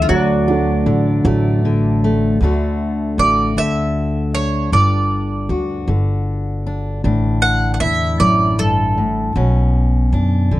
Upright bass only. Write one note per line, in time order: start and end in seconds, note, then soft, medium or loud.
0.09 0.82 D2 medium
0.86 1.23 A1 medium
1.25 2.37 A1 loud
2.41 3.14 D2 medium
3.18 3.55 A1 medium
3.57 4.69 D2 medium
4.72 5.46 G1 medium
5.49 5.86 D2 medium
5.88 7.00 G1 medium
7.04 7.78 A1 medium
7.81 8.18 E2 medium
8.20 9.32 A1 medium
9.36 10.09 B1 medium
10.13 10.49 F#2 medium
10.51 10.60 B1 medium